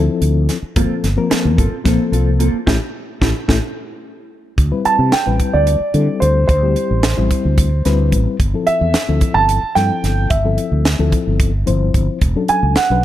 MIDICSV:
0, 0, Header, 1, 7, 480
1, 0, Start_track
1, 0, Tempo, 545455
1, 676, Time_signature, 7, 3, 24, 8
1, 11480, End_track
2, 0, Start_track
2, 0, Title_t, "Grand piano"
2, 0, Program_c, 0, 0
2, 4272, Note_on_c, 0, 81, 86
2, 4495, Note_off_c, 0, 81, 0
2, 4514, Note_on_c, 0, 79, 75
2, 4871, Note_on_c, 0, 74, 80
2, 4884, Note_off_c, 0, 79, 0
2, 5457, Note_on_c, 0, 72, 71
2, 5489, Note_off_c, 0, 74, 0
2, 5685, Note_off_c, 0, 72, 0
2, 5698, Note_on_c, 0, 72, 72
2, 7110, Note_off_c, 0, 72, 0
2, 7626, Note_on_c, 0, 76, 94
2, 8222, Note_on_c, 0, 81, 94
2, 8247, Note_off_c, 0, 76, 0
2, 8583, Note_on_c, 0, 79, 90
2, 8598, Note_off_c, 0, 81, 0
2, 9034, Note_off_c, 0, 79, 0
2, 9065, Note_on_c, 0, 76, 69
2, 9753, Note_off_c, 0, 76, 0
2, 10992, Note_on_c, 0, 80, 84
2, 11215, Note_off_c, 0, 80, 0
2, 11234, Note_on_c, 0, 78, 79
2, 11480, Note_off_c, 0, 78, 0
2, 11480, End_track
3, 0, Start_track
3, 0, Title_t, "Clean electric guitar"
3, 0, Program_c, 1, 27
3, 673, Note_on_c, 1, 58, 79
3, 675, Note_on_c, 1, 60, 83
3, 678, Note_on_c, 1, 65, 85
3, 681, Note_on_c, 1, 69, 94
3, 818, Note_off_c, 1, 58, 0
3, 819, Note_off_c, 1, 60, 0
3, 821, Note_off_c, 1, 65, 0
3, 822, Note_off_c, 1, 69, 0
3, 1145, Note_on_c, 1, 58, 59
3, 1150, Note_on_c, 1, 60, 64
3, 1154, Note_on_c, 1, 65, 65
3, 1158, Note_on_c, 1, 69, 67
3, 1294, Note_off_c, 1, 58, 0
3, 1296, Note_off_c, 1, 60, 0
3, 1298, Note_off_c, 1, 65, 0
3, 1300, Note_off_c, 1, 69, 0
3, 1386, Note_on_c, 1, 69, 51
3, 1392, Note_on_c, 1, 65, 47
3, 1399, Note_on_c, 1, 60, 38
3, 1535, Note_off_c, 1, 69, 0
3, 1537, Note_off_c, 1, 65, 0
3, 1541, Note_off_c, 1, 60, 0
3, 1626, Note_on_c, 1, 58, 74
3, 1629, Note_on_c, 1, 60, 73
3, 1633, Note_on_c, 1, 65, 82
3, 1634, Note_on_c, 1, 69, 88
3, 1774, Note_off_c, 1, 58, 0
3, 1776, Note_off_c, 1, 60, 0
3, 1778, Note_off_c, 1, 65, 0
3, 1778, Note_off_c, 1, 69, 0
3, 1867, Note_on_c, 1, 69, 51
3, 1874, Note_on_c, 1, 65, 50
3, 1879, Note_on_c, 1, 60, 45
3, 2014, Note_off_c, 1, 69, 0
3, 2018, Note_off_c, 1, 65, 0
3, 2020, Note_off_c, 1, 60, 0
3, 2106, Note_on_c, 1, 58, 52
3, 2110, Note_on_c, 1, 60, 58
3, 2114, Note_on_c, 1, 65, 61
3, 2117, Note_on_c, 1, 69, 57
3, 2254, Note_off_c, 1, 58, 0
3, 2256, Note_off_c, 1, 60, 0
3, 2258, Note_off_c, 1, 65, 0
3, 2260, Note_off_c, 1, 69, 0
3, 2345, Note_on_c, 1, 64, 90
3, 2346, Note_on_c, 1, 67, 88
3, 2347, Note_on_c, 1, 69, 85
3, 2425, Note_off_c, 1, 67, 0
3, 2425, Note_off_c, 1, 69, 0
3, 2426, Note_off_c, 1, 64, 0
3, 2827, Note_on_c, 1, 64, 90
3, 2828, Note_on_c, 1, 67, 89
3, 2830, Note_on_c, 1, 69, 91
3, 2906, Note_off_c, 1, 67, 0
3, 2907, Note_off_c, 1, 64, 0
3, 2907, Note_off_c, 1, 69, 0
3, 3065, Note_on_c, 1, 64, 89
3, 3070, Note_on_c, 1, 67, 85
3, 3070, Note_on_c, 1, 69, 84
3, 3146, Note_off_c, 1, 64, 0
3, 3147, Note_off_c, 1, 67, 0
3, 3147, Note_off_c, 1, 69, 0
3, 11480, End_track
4, 0, Start_track
4, 0, Title_t, "Reed electric piano"
4, 0, Program_c, 2, 4
4, 0, Note_on_c, 2, 53, 87
4, 0, Note_on_c, 2, 60, 80
4, 0, Note_on_c, 2, 64, 78
4, 0, Note_on_c, 2, 69, 96
4, 488, Note_off_c, 2, 53, 0
4, 492, Note_off_c, 2, 60, 0
4, 493, Note_off_c, 2, 64, 0
4, 494, Note_off_c, 2, 69, 0
4, 671, Note_on_c, 2, 53, 74
4, 672, Note_on_c, 2, 58, 65
4, 676, Note_on_c, 2, 60, 68
4, 676, Note_on_c, 2, 69, 75
4, 941, Note_off_c, 2, 53, 0
4, 942, Note_off_c, 2, 58, 0
4, 944, Note_off_c, 2, 60, 0
4, 944, Note_off_c, 2, 69, 0
4, 1025, Note_on_c, 2, 53, 78
4, 1028, Note_on_c, 2, 58, 72
4, 1030, Note_on_c, 2, 60, 68
4, 1037, Note_on_c, 2, 70, 83
4, 1477, Note_off_c, 2, 53, 0
4, 1478, Note_off_c, 2, 58, 0
4, 1479, Note_off_c, 2, 60, 0
4, 1483, Note_off_c, 2, 70, 0
4, 1624, Note_on_c, 2, 53, 90
4, 1627, Note_on_c, 2, 58, 80
4, 1631, Note_on_c, 2, 60, 81
4, 1634, Note_on_c, 2, 69, 91
4, 2166, Note_off_c, 2, 53, 0
4, 2167, Note_off_c, 2, 58, 0
4, 2169, Note_off_c, 2, 60, 0
4, 2171, Note_off_c, 2, 69, 0
4, 2350, Note_on_c, 2, 57, 89
4, 2350, Note_on_c, 2, 64, 86
4, 2352, Note_on_c, 2, 61, 84
4, 2428, Note_off_c, 2, 57, 0
4, 2428, Note_off_c, 2, 64, 0
4, 2430, Note_off_c, 2, 61, 0
4, 2829, Note_on_c, 2, 61, 86
4, 2830, Note_on_c, 2, 64, 83
4, 2831, Note_on_c, 2, 57, 83
4, 2908, Note_off_c, 2, 61, 0
4, 2908, Note_off_c, 2, 64, 0
4, 2909, Note_off_c, 2, 57, 0
4, 3066, Note_on_c, 2, 57, 85
4, 3067, Note_on_c, 2, 61, 86
4, 3069, Note_on_c, 2, 64, 84
4, 3146, Note_off_c, 2, 57, 0
4, 3147, Note_off_c, 2, 61, 0
4, 3148, Note_off_c, 2, 64, 0
4, 4147, Note_on_c, 2, 60, 53
4, 4148, Note_on_c, 2, 55, 59
4, 4151, Note_on_c, 2, 64, 56
4, 4153, Note_on_c, 2, 71, 63
4, 4508, Note_off_c, 2, 55, 0
4, 4508, Note_off_c, 2, 60, 0
4, 4510, Note_off_c, 2, 64, 0
4, 4510, Note_off_c, 2, 71, 0
4, 4630, Note_on_c, 2, 55, 57
4, 4631, Note_on_c, 2, 60, 52
4, 4635, Note_on_c, 2, 64, 54
4, 4636, Note_on_c, 2, 71, 68
4, 5078, Note_off_c, 2, 55, 0
4, 5079, Note_off_c, 2, 60, 0
4, 5081, Note_off_c, 2, 64, 0
4, 5081, Note_off_c, 2, 71, 0
4, 5225, Note_on_c, 2, 55, 59
4, 5229, Note_on_c, 2, 60, 52
4, 5230, Note_on_c, 2, 64, 50
4, 5235, Note_on_c, 2, 69, 59
4, 5676, Note_off_c, 2, 55, 0
4, 5678, Note_off_c, 2, 60, 0
4, 5678, Note_off_c, 2, 64, 0
4, 5681, Note_off_c, 2, 69, 0
4, 5830, Note_on_c, 2, 55, 56
4, 5831, Note_on_c, 2, 60, 51
4, 5834, Note_on_c, 2, 64, 53
4, 5837, Note_on_c, 2, 67, 65
4, 6189, Note_off_c, 2, 55, 0
4, 6189, Note_off_c, 2, 60, 0
4, 6191, Note_off_c, 2, 64, 0
4, 6192, Note_off_c, 2, 67, 0
4, 6311, Note_on_c, 2, 55, 72
4, 6313, Note_on_c, 2, 60, 67
4, 6316, Note_on_c, 2, 64, 71
4, 6319, Note_on_c, 2, 72, 82
4, 6759, Note_off_c, 2, 55, 0
4, 6760, Note_off_c, 2, 60, 0
4, 6761, Note_off_c, 2, 64, 0
4, 6763, Note_off_c, 2, 72, 0
4, 6910, Note_on_c, 2, 55, 69
4, 6912, Note_on_c, 2, 60, 65
4, 6915, Note_on_c, 2, 71, 79
4, 6916, Note_on_c, 2, 64, 63
4, 7358, Note_off_c, 2, 55, 0
4, 7359, Note_off_c, 2, 60, 0
4, 7361, Note_off_c, 2, 71, 0
4, 7362, Note_off_c, 2, 64, 0
4, 7514, Note_on_c, 2, 53, 61
4, 7519, Note_on_c, 2, 60, 55
4, 7519, Note_on_c, 2, 64, 54
4, 7527, Note_on_c, 2, 69, 67
4, 7871, Note_off_c, 2, 53, 0
4, 7873, Note_off_c, 2, 60, 0
4, 7873, Note_off_c, 2, 64, 0
4, 7877, Note_off_c, 2, 69, 0
4, 7993, Note_on_c, 2, 53, 58
4, 7993, Note_on_c, 2, 60, 59
4, 7994, Note_on_c, 2, 64, 56
4, 7999, Note_on_c, 2, 69, 64
4, 8440, Note_off_c, 2, 53, 0
4, 8440, Note_off_c, 2, 60, 0
4, 8441, Note_off_c, 2, 64, 0
4, 8443, Note_off_c, 2, 69, 0
4, 8587, Note_on_c, 2, 53, 58
4, 8592, Note_on_c, 2, 60, 56
4, 8595, Note_on_c, 2, 64, 54
4, 8599, Note_on_c, 2, 69, 64
4, 9037, Note_off_c, 2, 53, 0
4, 9039, Note_off_c, 2, 60, 0
4, 9041, Note_off_c, 2, 64, 0
4, 9043, Note_off_c, 2, 69, 0
4, 9192, Note_on_c, 2, 53, 57
4, 9195, Note_on_c, 2, 60, 52
4, 9199, Note_on_c, 2, 64, 50
4, 9199, Note_on_c, 2, 69, 63
4, 9550, Note_off_c, 2, 53, 0
4, 9552, Note_off_c, 2, 60, 0
4, 9553, Note_off_c, 2, 69, 0
4, 9554, Note_off_c, 2, 64, 0
4, 9669, Note_on_c, 2, 53, 73
4, 9672, Note_on_c, 2, 60, 62
4, 9674, Note_on_c, 2, 64, 63
4, 9679, Note_on_c, 2, 69, 80
4, 10118, Note_off_c, 2, 53, 0
4, 10119, Note_off_c, 2, 60, 0
4, 10120, Note_off_c, 2, 64, 0
4, 10123, Note_off_c, 2, 69, 0
4, 10264, Note_on_c, 2, 53, 63
4, 10266, Note_on_c, 2, 60, 61
4, 10270, Note_on_c, 2, 64, 62
4, 10272, Note_on_c, 2, 72, 79
4, 10715, Note_off_c, 2, 53, 0
4, 10717, Note_off_c, 2, 60, 0
4, 10718, Note_off_c, 2, 64, 0
4, 10720, Note_off_c, 2, 72, 0
4, 10875, Note_on_c, 2, 54, 61
4, 10877, Note_on_c, 2, 61, 55
4, 10881, Note_on_c, 2, 62, 53
4, 10883, Note_on_c, 2, 69, 63
4, 11232, Note_off_c, 2, 54, 0
4, 11233, Note_off_c, 2, 61, 0
4, 11235, Note_off_c, 2, 62, 0
4, 11236, Note_off_c, 2, 69, 0
4, 11355, Note_on_c, 2, 54, 58
4, 11358, Note_on_c, 2, 61, 52
4, 11361, Note_on_c, 2, 62, 54
4, 11366, Note_on_c, 2, 71, 66
4, 11480, Note_off_c, 2, 54, 0
4, 11480, Note_off_c, 2, 61, 0
4, 11480, Note_off_c, 2, 62, 0
4, 11480, Note_off_c, 2, 71, 0
4, 11480, End_track
5, 0, Start_track
5, 0, Title_t, "Fretless electric bass"
5, 0, Program_c, 3, 35
5, 190, Note_on_c, 3, 38, 74
5, 419, Note_off_c, 3, 38, 0
5, 671, Note_on_c, 3, 31, 92
5, 787, Note_off_c, 3, 31, 0
5, 913, Note_on_c, 3, 31, 72
5, 1027, Note_off_c, 3, 31, 0
5, 1278, Note_on_c, 3, 40, 85
5, 1385, Note_off_c, 3, 40, 0
5, 1390, Note_on_c, 3, 31, 76
5, 1506, Note_off_c, 3, 31, 0
5, 1634, Note_on_c, 3, 34, 80
5, 1741, Note_off_c, 3, 34, 0
5, 1866, Note_on_c, 3, 36, 74
5, 2210, Note_off_c, 3, 36, 0
5, 2352, Note_on_c, 3, 33, 85
5, 2442, Note_off_c, 3, 33, 0
5, 2829, Note_on_c, 3, 33, 88
5, 2920, Note_off_c, 3, 33, 0
5, 3069, Note_on_c, 3, 33, 76
5, 3160, Note_off_c, 3, 33, 0
5, 4030, Note_on_c, 3, 38, 83
5, 4145, Note_off_c, 3, 38, 0
5, 4389, Note_on_c, 3, 48, 76
5, 4504, Note_off_c, 3, 48, 0
5, 4638, Note_on_c, 3, 33, 73
5, 4749, Note_off_c, 3, 33, 0
5, 4876, Note_on_c, 3, 38, 78
5, 5101, Note_off_c, 3, 38, 0
5, 5228, Note_on_c, 3, 50, 71
5, 5344, Note_off_c, 3, 50, 0
5, 5474, Note_on_c, 3, 38, 77
5, 5700, Note_off_c, 3, 38, 0
5, 5708, Note_on_c, 3, 38, 84
5, 5937, Note_off_c, 3, 38, 0
5, 6078, Note_on_c, 3, 33, 69
5, 6302, Note_off_c, 3, 33, 0
5, 6319, Note_on_c, 3, 33, 72
5, 6429, Note_off_c, 3, 33, 0
5, 6558, Note_on_c, 3, 38, 75
5, 6895, Note_off_c, 3, 38, 0
5, 6914, Note_on_c, 3, 38, 76
5, 7140, Note_off_c, 3, 38, 0
5, 7152, Note_on_c, 3, 33, 82
5, 7265, Note_off_c, 3, 33, 0
5, 7387, Note_on_c, 3, 31, 87
5, 7503, Note_off_c, 3, 31, 0
5, 7754, Note_on_c, 3, 40, 85
5, 7866, Note_off_c, 3, 40, 0
5, 7997, Note_on_c, 3, 38, 75
5, 8108, Note_off_c, 3, 38, 0
5, 8226, Note_on_c, 3, 31, 79
5, 8456, Note_off_c, 3, 31, 0
5, 8591, Note_on_c, 3, 43, 78
5, 8705, Note_off_c, 3, 43, 0
5, 8832, Note_on_c, 3, 31, 74
5, 9059, Note_off_c, 3, 31, 0
5, 9068, Note_on_c, 3, 31, 84
5, 9297, Note_off_c, 3, 31, 0
5, 9431, Note_on_c, 3, 38, 73
5, 9658, Note_off_c, 3, 38, 0
5, 9674, Note_on_c, 3, 38, 69
5, 9787, Note_off_c, 3, 38, 0
5, 9920, Note_on_c, 3, 31, 74
5, 10257, Note_off_c, 3, 31, 0
5, 10279, Note_on_c, 3, 31, 72
5, 10503, Note_off_c, 3, 31, 0
5, 10509, Note_on_c, 3, 31, 86
5, 10624, Note_off_c, 3, 31, 0
5, 10747, Note_on_c, 3, 28, 87
5, 10863, Note_off_c, 3, 28, 0
5, 11113, Note_on_c, 3, 37, 82
5, 11226, Note_off_c, 3, 37, 0
5, 11353, Note_on_c, 3, 35, 70
5, 11466, Note_off_c, 3, 35, 0
5, 11480, End_track
6, 0, Start_track
6, 0, Title_t, "Muted fretless electric bass strokes"
6, 550, Note_on_c, 9, 29, 37
6, 638, Note_off_c, 9, 29, 0
6, 1158, Note_on_c, 9, 29, 36
6, 1246, Note_off_c, 9, 29, 0
6, 1746, Note_on_c, 9, 29, 34
6, 1834, Note_off_c, 9, 29, 0
6, 2232, Note_on_c, 9, 29, 33
6, 2320, Note_off_c, 9, 29, 0
6, 4275, Note_on_c, 9, 29, 30
6, 4363, Note_off_c, 9, 29, 0
6, 4518, Note_on_c, 9, 29, 32
6, 4606, Note_off_c, 9, 29, 0
6, 5106, Note_on_c, 9, 29, 32
6, 5194, Note_off_c, 9, 29, 0
6, 7636, Note_on_c, 9, 29, 30
6, 7724, Note_off_c, 9, 29, 0
6, 7874, Note_on_c, 9, 29, 33
6, 7962, Note_off_c, 9, 29, 0
6, 10995, Note_on_c, 9, 29, 28
6, 11083, Note_off_c, 9, 29, 0
6, 11237, Note_on_c, 9, 29, 34
6, 11325, Note_off_c, 9, 29, 0
6, 11480, End_track
7, 0, Start_track
7, 0, Title_t, "Drums"
7, 191, Note_on_c, 9, 42, 53
7, 279, Note_off_c, 9, 42, 0
7, 430, Note_on_c, 9, 42, 60
7, 432, Note_on_c, 9, 38, 29
7, 518, Note_off_c, 9, 42, 0
7, 520, Note_off_c, 9, 38, 0
7, 669, Note_on_c, 9, 42, 78
7, 671, Note_on_c, 9, 36, 96
7, 757, Note_off_c, 9, 42, 0
7, 759, Note_off_c, 9, 36, 0
7, 914, Note_on_c, 9, 42, 60
7, 916, Note_on_c, 9, 38, 32
7, 1002, Note_off_c, 9, 42, 0
7, 1004, Note_off_c, 9, 38, 0
7, 1152, Note_on_c, 9, 42, 68
7, 1154, Note_on_c, 9, 38, 89
7, 1240, Note_off_c, 9, 42, 0
7, 1242, Note_off_c, 9, 38, 0
7, 1393, Note_on_c, 9, 36, 73
7, 1396, Note_on_c, 9, 42, 51
7, 1481, Note_off_c, 9, 36, 0
7, 1484, Note_off_c, 9, 42, 0
7, 1632, Note_on_c, 9, 36, 97
7, 1634, Note_on_c, 9, 42, 75
7, 1636, Note_on_c, 9, 38, 31
7, 1720, Note_off_c, 9, 36, 0
7, 1722, Note_off_c, 9, 42, 0
7, 1724, Note_off_c, 9, 38, 0
7, 1877, Note_on_c, 9, 42, 50
7, 1965, Note_off_c, 9, 42, 0
7, 2113, Note_on_c, 9, 42, 53
7, 2201, Note_off_c, 9, 42, 0
7, 2351, Note_on_c, 9, 36, 77
7, 2357, Note_on_c, 9, 38, 75
7, 2439, Note_off_c, 9, 36, 0
7, 2445, Note_off_c, 9, 38, 0
7, 2830, Note_on_c, 9, 36, 82
7, 2834, Note_on_c, 9, 38, 78
7, 2918, Note_off_c, 9, 36, 0
7, 2922, Note_off_c, 9, 38, 0
7, 3069, Note_on_c, 9, 36, 81
7, 3072, Note_on_c, 9, 38, 77
7, 3157, Note_off_c, 9, 36, 0
7, 3160, Note_off_c, 9, 38, 0
7, 4029, Note_on_c, 9, 36, 94
7, 4032, Note_on_c, 9, 42, 68
7, 4117, Note_off_c, 9, 36, 0
7, 4120, Note_off_c, 9, 42, 0
7, 4270, Note_on_c, 9, 42, 54
7, 4358, Note_off_c, 9, 42, 0
7, 4506, Note_on_c, 9, 42, 70
7, 4508, Note_on_c, 9, 38, 91
7, 4594, Note_off_c, 9, 42, 0
7, 4596, Note_off_c, 9, 38, 0
7, 4748, Note_on_c, 9, 42, 53
7, 4749, Note_on_c, 9, 36, 63
7, 4836, Note_off_c, 9, 42, 0
7, 4837, Note_off_c, 9, 36, 0
7, 4988, Note_on_c, 9, 42, 69
7, 5076, Note_off_c, 9, 42, 0
7, 5227, Note_on_c, 9, 42, 49
7, 5315, Note_off_c, 9, 42, 0
7, 5473, Note_on_c, 9, 42, 52
7, 5561, Note_off_c, 9, 42, 0
7, 5710, Note_on_c, 9, 36, 96
7, 5711, Note_on_c, 9, 42, 67
7, 5798, Note_off_c, 9, 36, 0
7, 5799, Note_off_c, 9, 42, 0
7, 5950, Note_on_c, 9, 42, 51
7, 6038, Note_off_c, 9, 42, 0
7, 6187, Note_on_c, 9, 42, 67
7, 6189, Note_on_c, 9, 38, 96
7, 6275, Note_off_c, 9, 42, 0
7, 6277, Note_off_c, 9, 38, 0
7, 6429, Note_on_c, 9, 42, 53
7, 6430, Note_on_c, 9, 36, 65
7, 6517, Note_off_c, 9, 42, 0
7, 6518, Note_off_c, 9, 36, 0
7, 6668, Note_on_c, 9, 42, 76
7, 6669, Note_on_c, 9, 36, 91
7, 6756, Note_off_c, 9, 42, 0
7, 6757, Note_off_c, 9, 36, 0
7, 6910, Note_on_c, 9, 42, 54
7, 6912, Note_on_c, 9, 38, 27
7, 6998, Note_off_c, 9, 42, 0
7, 7000, Note_off_c, 9, 38, 0
7, 7149, Note_on_c, 9, 36, 61
7, 7149, Note_on_c, 9, 42, 59
7, 7237, Note_off_c, 9, 36, 0
7, 7237, Note_off_c, 9, 42, 0
7, 7389, Note_on_c, 9, 36, 91
7, 7389, Note_on_c, 9, 42, 69
7, 7477, Note_off_c, 9, 36, 0
7, 7477, Note_off_c, 9, 42, 0
7, 7628, Note_on_c, 9, 42, 61
7, 7716, Note_off_c, 9, 42, 0
7, 7866, Note_on_c, 9, 42, 76
7, 7867, Note_on_c, 9, 38, 90
7, 7954, Note_off_c, 9, 42, 0
7, 7955, Note_off_c, 9, 38, 0
7, 8105, Note_on_c, 9, 42, 58
7, 8108, Note_on_c, 9, 36, 65
7, 8193, Note_off_c, 9, 42, 0
7, 8196, Note_off_c, 9, 36, 0
7, 8350, Note_on_c, 9, 42, 74
7, 8438, Note_off_c, 9, 42, 0
7, 8592, Note_on_c, 9, 42, 52
7, 8593, Note_on_c, 9, 38, 30
7, 8680, Note_off_c, 9, 42, 0
7, 8681, Note_off_c, 9, 38, 0
7, 8834, Note_on_c, 9, 42, 53
7, 8836, Note_on_c, 9, 38, 29
7, 8922, Note_off_c, 9, 42, 0
7, 8924, Note_off_c, 9, 38, 0
7, 9067, Note_on_c, 9, 42, 69
7, 9070, Note_on_c, 9, 36, 94
7, 9155, Note_off_c, 9, 42, 0
7, 9158, Note_off_c, 9, 36, 0
7, 9309, Note_on_c, 9, 42, 53
7, 9397, Note_off_c, 9, 42, 0
7, 9550, Note_on_c, 9, 42, 66
7, 9552, Note_on_c, 9, 38, 92
7, 9638, Note_off_c, 9, 42, 0
7, 9640, Note_off_c, 9, 38, 0
7, 9788, Note_on_c, 9, 42, 52
7, 9789, Note_on_c, 9, 36, 69
7, 9876, Note_off_c, 9, 42, 0
7, 9877, Note_off_c, 9, 36, 0
7, 10028, Note_on_c, 9, 42, 70
7, 10029, Note_on_c, 9, 36, 93
7, 10116, Note_off_c, 9, 42, 0
7, 10117, Note_off_c, 9, 36, 0
7, 10270, Note_on_c, 9, 42, 50
7, 10358, Note_off_c, 9, 42, 0
7, 10510, Note_on_c, 9, 36, 60
7, 10510, Note_on_c, 9, 42, 51
7, 10598, Note_off_c, 9, 36, 0
7, 10598, Note_off_c, 9, 42, 0
7, 10748, Note_on_c, 9, 42, 68
7, 10750, Note_on_c, 9, 36, 94
7, 10836, Note_off_c, 9, 42, 0
7, 10838, Note_off_c, 9, 36, 0
7, 10986, Note_on_c, 9, 42, 55
7, 11074, Note_off_c, 9, 42, 0
7, 11225, Note_on_c, 9, 42, 70
7, 11227, Note_on_c, 9, 38, 90
7, 11313, Note_off_c, 9, 42, 0
7, 11315, Note_off_c, 9, 38, 0
7, 11480, End_track
0, 0, End_of_file